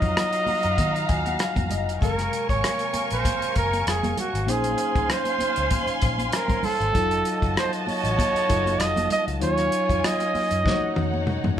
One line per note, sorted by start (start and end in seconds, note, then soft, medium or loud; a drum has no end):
0.00 0.14 F2 medium
0.00 1.97 F#3 medium
0.00 1.98 D#4 soft
0.00 1.98 F4 medium
0.00 1.97 F#4 medium
0.00 1.98 C#5 medium
0.00 1.68 D#5 loud
0.00 1.97 F5 medium
0.00 1.97 A#5 medium
0.00 kick medium
0.00 closed hi-hat soft
0.17 cross-stick loud
0.17 closed hi-hat medium
0.17 muted conga soft
0.17 high conga soft
0.33 closed hi-hat soft
0.47 muted fingered electric bass stroke soft
0.47 open hi-hat soft
0.47 high conga medium
0.47 low conga medium
0.63 0.76 F#2 medium
0.63 closed hi-hat soft
0.78 1.04 D#3 loud
0.78 kick medium
0.78 closed hi-hat medium
0.78 high conga medium
0.95 closed hi-hat soft
0.95 muted conga soft
1.09 1.35 D#2 medium
1.09 1.24 G#5 medium
1.09 kick medium
1.09 closed hi-hat medium
1.26 1.39 F#5 medium
1.26 closed hi-hat soft
1.26 high conga medium
1.39 1.69 F5 medium
1.39 cross-stick medium
1.39 closed hi-hat medium
1.39 muted conga soft
1.56 1.68 F2 medium
1.56 kick medium
1.56 closed hi-hat soft
1.56 muted conga soft
1.56 high conga medium
1.56 low conga medium
1.69 1.87 F#1 medium
1.69 2.00 D#5 medium
1.69 closed hi-hat medium
1.69 low conga medium
1.87 1.99 F1 medium
1.87 closed hi-hat soft
2.01 2.28 F#1 medium
2.01 4.45 C3 medium
2.01 4.46 C3 medium
2.01 6.92 F#3 medium
2.01 4.44 G#3 medium
2.01 4.46 A#3 medium
2.01 4.44 A#4 medium
2.01 2.46 A#4 medium
2.01 4.46 A#4 medium
2.01 4.46 F5 medium
2.01 4.45 F5 medium
2.01 4.44 G#5 medium
2.01 4.44 C#6 medium
2.01 kick medium
2.01 closed hi-hat medium
2.01 muted conga soft
2.18 cross-stick soft
2.18 closed hi-hat soft
2.18 muted conga soft
2.33 closed hi-hat medium
2.49 2.61 G#1 medium
2.49 3.07 C#5 medium
2.49 kick medium
2.49 closed hi-hat soft
2.64 cross-stick loud
2.64 closed hi-hat medium
2.64 muted conga soft
2.64 high conga soft
2.79 closed hi-hat soft
2.79 muted conga soft
2.94 muted fingered electric bass stroke soft
2.94 closed hi-hat medium
2.94 high conga medium
3.10 3.23 A#1 medium
3.10 3.54 C5 medium
3.10 closed hi-hat soft
3.25 kick medium
3.25 closed hi-hat loud
3.25 muted conga soft
3.25 high conga medium
3.42 muted fingered electric bass stroke soft
3.42 closed hi-hat soft
3.56 3.82 F#1 medium
3.56 3.85 A#4 medium
3.56 kick medium
3.56 closed hi-hat medium
3.73 closed hi-hat soft
3.73 high conga medium
3.87 4.13 F1 medium
3.87 4.16 G#4 medium
3.87 cross-stick medium
3.87 closed hi-hat medium
4.03 closed hi-hat soft
4.03 muted conga soft
4.03 high conga medium
4.03 low conga medium
4.17 4.52 F#4 medium
4.17 closed hi-hat medium
4.17 low conga medium
4.34 4.46 G#1 medium
4.34 closed hi-hat soft
4.47 4.74 A#1 medium
4.47 6.93 C#3 medium
4.47 6.90 A#3 medium
4.47 6.91 C#4 medium
4.47 6.93 D#4 medium
4.47 6.91 D#4 medium
4.47 5.13 G#4 medium
4.47 6.92 C5 medium
4.47 6.91 C5 medium
4.47 6.91 F5 medium
4.47 6.91 G#5 medium
4.47 6.91 C6 medium
4.47 closed hi-hat medium
4.47 muted conga soft
4.64 closed hi-hat soft
4.64 muted conga soft
4.78 closed hi-hat medium
4.95 5.08 C2 medium
4.95 kick medium
4.95 closed hi-hat soft
5.10 6.07 C5 medium
5.10 cross-stick loud
5.10 closed hi-hat medium
5.10 high conga soft
5.25 closed hi-hat soft
5.25 muted conga soft
5.39 muted fingered electric bass stroke soft
5.39 closed hi-hat medium
5.39 high conga medium
5.56 5.69 C#2 medium
5.56 closed hi-hat soft
5.71 kick medium
5.71 closed hi-hat loud
5.71 muted conga soft
5.71 high conga medium
5.87 muted fingered electric bass stroke soft
5.87 closed hi-hat soft
5.87 muted conga soft
6.02 6.29 A#1 medium
6.02 kick medium
6.02 closed hi-hat medium
6.18 closed hi-hat soft
6.18 high conga medium
6.32 6.66 A#4 medium
6.32 cross-stick medium
6.32 closed hi-hat medium
6.32 muted conga soft
6.48 kick medium
6.48 closed hi-hat soft
6.48 high conga medium
6.48 low conga medium
6.63 7.57 A4 loud
6.63 muted fingered electric bass stroke soft
6.63 open hi-hat soft
6.63 low conga medium
6.80 6.92 G#1 medium
6.80 closed hi-hat soft
6.93 7.21 F1 medium
6.93 9.38 D#3 medium
6.93 8.45 F#3 medium
6.93 10.61 F#3 medium
6.93 9.39 A3 medium
6.93 8.46 D#4 medium
6.93 8.46 F4 medium
6.93 9.38 F#4 medium
6.93 8.47 A4 medium
6.93 9.38 D#5 medium
6.93 10.61 F5 medium
6.93 9.38 A5 medium
6.93 kick medium
6.93 closed hi-hat medium
7.11 closed hi-hat soft
7.25 closed hi-hat medium
7.42 7.55 F#1 medium
7.42 kick medium
7.42 closed hi-hat soft
7.56 7.72 C5 medium
7.56 cross-stick loud
7.56 closed hi-hat medium
7.56 muted conga soft
7.56 high conga soft
7.73 closed hi-hat soft
7.87 8.81 C#5 loud
7.87 muted fingered electric bass stroke soft
7.87 open hi-hat soft
7.87 high conga medium
8.04 8.16 A1 medium
8.04 closed hi-hat soft
8.18 kick medium
8.18 closed hi-hat medium
8.18 muted conga soft
8.18 high conga medium
8.34 muted fingered electric bass stroke soft
8.34 closed hi-hat soft
8.48 8.76 F#1 medium
8.48 9.39 F#3 soft
8.48 9.40 D#4 soft
8.48 9.40 F4 soft
8.48 9.42 A4 medium
8.48 kick medium
8.48 closed hi-hat medium
8.66 closed hi-hat soft
8.66 high conga medium
8.80 9.06 F1 loud
8.80 9.11 D#5 loud
8.80 cross-stick medium
8.80 closed hi-hat medium
8.96 closed hi-hat soft
8.96 muted conga soft
8.96 high conga medium
8.96 low conga medium
9.10 9.26 D#5 loud
9.10 closed hi-hat medium
9.10 low conga medium
9.27 9.40 C#2 medium
9.27 closed hi-hat soft
9.40 9.68 D#2 medium
9.40 11.60 D#3 medium
9.40 10.62 F#3 medium
9.40 10.64 C#4 medium
9.40 10.62 D#4 medium
9.40 10.63 F4 medium
9.40 10.63 C#5 medium
9.40 10.07 C#5 loud
9.40 10.63 G#5 medium
9.40 closed hi-hat medium
9.40 muted conga soft
9.58 cross-stick soft
9.58 closed hi-hat soft
9.72 closed hi-hat medium
9.89 10.02 F2 medium
9.89 kick medium
9.89 closed hi-hat soft
10.04 11.28 D#5 medium
10.04 cross-stick loud
10.04 closed hi-hat loud
10.04 muted conga soft
10.04 high conga soft
10.20 closed hi-hat soft
10.20 muted conga soft
10.34 muted fingered electric bass stroke soft
10.34 open hi-hat soft
10.34 high conga medium
10.51 10.63 F#2 medium
10.51 closed hi-hat soft
10.64 10.92 F3 loud
10.64 11.60 A3 medium
10.64 11.60 C#4 medium
10.64 11.60 D#4 soft
10.64 11.60 D#4 medium
10.64 11.60 F#4 medium
10.64 10.73 C5 medium
10.64 11.60 C#5 medium
10.64 11.60 F#5 medium
10.64 kick loud
10.64 snare medium
10.64 high conga medium
10.72 11.60 C#5 medium
10.96 11.37 F2 medium
10.96 high tom medium
11.14 high conga medium
11.27 mid tom medium
11.27 muted conga soft
11.44 11.56 F#2 medium
11.44 mid tom medium
11.44 high conga medium
11.44 low conga medium